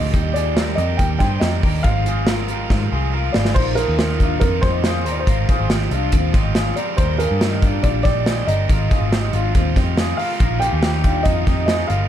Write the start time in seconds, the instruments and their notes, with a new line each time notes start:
Already playing: picked electric bass D2, overdriven electric guitar F3 G#3 C4 F4, clean electric guitar G4 A#4, upright piano D#5
0.13 picked electric bass D#2, overdriven electric guitar D#3 G3 A#3 D4 G4, clean electric guitar D#4 G4, kick, closed hi-hat
0.33 overdriven electric guitar A#3 D4 G4, clean electric guitar F4 G#4, upright piano D5, closed hi-hat
0.56 overdriven electric guitar G3 A#3 D4 G4, clean electric guitar G4 A#4, snare, closed hi-hat
0.75 picked electric bass F2, overdriven electric guitar G4, clean electric guitar G4 A#4, upright piano D#5, closed hi-hat
0.79 overdriven electric guitar A#3 D4
0.97 picked electric bass D#2, overdriven electric guitar D#3 G3 A#3 D4, upright piano G5, kick, closed hi-hat
1.01 overdriven electric guitar G4
1.19 picked electric bass G2, overdriven electric guitar D4 G4, clean electric guitar G#4 C5, upright piano G5, kick, snare, closed hi-hat
1.24 overdriven electric guitar A#3
1.40 picked electric bass F2, overdriven electric guitar G3 A#3 D4, clean electric guitar G4 A#4, upright piano D#5, snare, closed hi-hat
1.44 overdriven electric guitar G4
1.63 picked electric bass D#2, overdriven electric guitar A#3 D4 G4, clean electric guitar G4 A#4, kick, open hi-hat
1.83 picked electric bass G#1, overdriven electric guitar G#2 D#3 F3 G#3 C4 F4, clean electric guitar C4 F4, upright piano F5, kick, closed hi-hat
2.06 overdriven electric guitar F3 G#3 C4 F4, clean electric guitar F4 G#4, closed hi-hat
2.27 overdriven electric guitar F3 G#3 C4 F4, clean electric guitar F4 A#4, snare, closed hi-hat
2.48 overdriven electric guitar F3 G#3 C4 F4, clean electric guitar G4 A#4, closed hi-hat
2.70 overdriven electric guitar G#2 D#3 F3 G#3 C4 F4, picked electric bass G#2, kick, snare
2.92 picked electric bass C2, overdriven electric guitar F3 G#3 C4 F4, clean electric guitar F4 G#4
3.12 overdriven electric guitar F3 G#3 C4 F4, clean electric guitar F4 A#4
3.32 picked electric bass G#1, overdriven electric guitar G#3 C4 F4, clean electric guitar F4 G#4, upright piano D5, snare
3.37 overdriven electric guitar F3
3.45 snare
3.54 picked electric bass A#1, overdriven electric guitar A#2 D#3 A#3 D#4 F4, clean electric guitar F4 A#4, upright piano C5, kick, crash
3.75 overdriven electric guitar D#4 F4, clean electric guitar F4 G#4, upright piano A#4, closed hi-hat
3.79 overdriven electric guitar A#3
3.88 picked electric bass D#2
3.99 overdriven electric guitar A#2 D#3 A#3 D#4 F4, clean electric guitar D#4 G4, snare, closed hi-hat
4.20 overdriven electric guitar A#3 D#4 F4, clean electric guitar D4 F4, kick, closed hi-hat
4.40 picked electric bass F2, overdriven electric guitar D#3 A#3 D#4, clean electric guitar A#3 F4, upright piano A#4, kick, closed hi-hat
4.44 overdriven electric guitar F4
4.62 picked electric bass F2, overdriven electric guitar D#4 F4, clean electric guitar D#4 G4, upright piano C5, kick, snare, closed hi-hat
4.66 overdriven electric guitar A#3
4.84 overdriven electric guitar A#2 D#3 A#3 D#4 F4, clean electric guitar F4 G#4, snare, closed hi-hat
5.04 picked electric bass D#2, overdriven electric guitar D#4 F4, clean electric guitar G4 A#4, upright piano C5, closed hi-hat
5.08 overdriven electric guitar A#3, upright piano D5
5.19 upright piano C5
5.26 picked electric bass G#1, overdriven electric guitar G#2 D#3 F3 G#3 C4 F4, clean electric guitar F4 A#4, kick, closed hi-hat
5.48 overdriven electric guitar F3 G#3 C4 F4, clean electric guitar F4 G#4, kick, closed hi-hat
5.60 picked electric bass G#1
5.69 overdriven electric guitar G#2 D#3 F3 G#3 C4 F4, clean electric guitar D#4 G4, snare, closed hi-hat
5.91 picked electric bass C2, overdriven electric guitar F3 G#3 C4 F4, clean electric guitar D4 F4, closed hi-hat
6.12 picked electric bass D#2, overdriven electric guitar F3 G#3 C4 F4, clean electric guitar C4 F4, kick, closed hi-hat
6.33 picked electric bass G#1, overdriven electric guitar F3 G#3 C4 F4, clean electric guitar D#4 G4, kick, snare, closed hi-hat
6.54 overdriven electric guitar G#2 D#3 F3 G#3 C4 F4, clean electric guitar F4 G#4, snare, closed hi-hat
6.76 overdriven electric guitar F3 G#3 C4 F4, clean electric guitar G4 A#4, upright piano D5, closed hi-hat
6.97 picked electric bass D#2, overdriven electric guitar D#3 G3 A#3 D4 G4, clean electric guitar G4 A#4, upright piano C5, kick, closed hi-hat
7.18 overdriven electric guitar A#3 D4 G4, clean electric guitar F4 G#4, upright piano A#4, closed hi-hat
7.31 picked electric bass G2
7.41 overdriven electric guitar D#3 G3 A#3 D4 G4, clean electric guitar D#4 G4, snare, closed hi-hat
7.61 overdriven electric guitar A#3 D4 G4, clean electric guitar D4 F4, kick, closed hi-hat
7.83 picked electric bass A#1, overdriven electric guitar G3 A#3 D4 G4, clean electric guitar D4 F4, upright piano D5, kick, closed hi-hat
8.03 picked electric bass A#1, overdriven electric guitar D4 G4, clean electric guitar D#4 G4, upright piano D5, kick, snare, closed hi-hat
8.08 overdriven electric guitar A#3
8.26 overdriven electric guitar D#3 G3 A#3 D4 G4, clean electric guitar D#4 G#4, snare, closed hi-hat
8.47 picked electric bass G1, overdriven electric guitar A#3 D4 G4, clean electric guitar G4 A#4, upright piano D#5, closed hi-hat
8.69 picked electric bass G#1, overdriven electric guitar G#2 D#3 F3 G#3 C4 F4, clean electric guitar F4 A#4, kick, closed hi-hat
8.90 overdriven electric guitar F3 G#3 C4 F4, clean electric guitar F4 G#4, kick, closed hi-hat
9.01 picked electric bass G#1
9.12 overdriven electric guitar G#2 D#3 F3 G#3 C4 F4, clean electric guitar D#4 G4, snare, closed hi-hat
9.33 picked electric bass G#1, overdriven electric guitar F3 G#3 C4 F4, clean electric guitar D4 F4, closed hi-hat
9.54 picked electric bass D#2, overdriven electric guitar F3 G#3 C4 F4, clean electric guitar C4 F4, kick, closed hi-hat
9.76 picked electric bass F2, overdriven electric guitar F3 G#3 C4 F4, clean electric guitar D#4 G4, kick, snare, closed hi-hat
9.97 overdriven electric guitar G#2 D#3 F3 G#3 C4 F4, clean electric guitar F4 G#4, snare, closed hi-hat
10.17 overdriven electric guitar F3 G#3 C4 F4, trumpet F4, clean electric guitar G4 A#4, upright piano F5, open hi-hat
10.40 picked electric bass A#1, overdriven electric guitar A#2 D#3 A#3 D#4 F4, clean electric guitar F4 A#4, kick, closed hi-hat
10.60 overdriven electric guitar A#3 D#4 F4, clean electric guitar F4 G#4, trumpet G4, upright piano G5, closed hi-hat
10.73 picked electric bass D#2
10.82 overdriven electric guitar A#2 D#3 A#3 D#4 F4, clean electric guitar D#4 G4, snare, closed hi-hat
11.04 overdriven electric guitar A#3 D#4 F4, clean electric guitar D4 F4, kick, closed hi-hat
11.23 picked electric bass F2, overdriven electric guitar D#3 A#3, clean electric guitar A#3 F4, trumpet D#4, upright piano D#5, kick, closed hi-hat
11.27 overdriven electric guitar D#4 F4
11.47 picked electric bass F2, overdriven electric guitar A#3 D#4 F4, clean electric guitar D#4 G4, kick, snare, closed hi-hat
11.66 trumpet D#4, clean electric guitar F4 G#4, upright piano D#5, snare, closed hi-hat
11.70 overdriven electric guitar D#3 A#3 D#4 F4
11.87 picked electric bass G1, overdriven electric guitar D#4 F4, trumpet F4, clean electric guitar G4 A#4, upright piano F5, closed hi-hat
11.92 overdriven electric guitar A#3